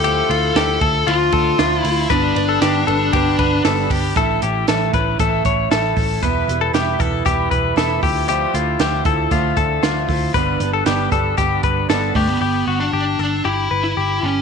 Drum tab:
RD |xxxxxxxx|xxxxxxxx|--------|--------|
HH |p------o|p------o|xxxxxxxo|xxxxxxxo|
SD |--o---o-|--o---o-|--o---o-|--o---o-|
BD |---o-o--|o---oo-o|o--ooo-o|o--ooo-o|

RD |--------|--------|--------|
HH |xxxxxxxo|xxxxxxxo|--------|
SD |--o---o-|--o---o-|--------|
BD |---ooo-o|o--ooo-o|--------|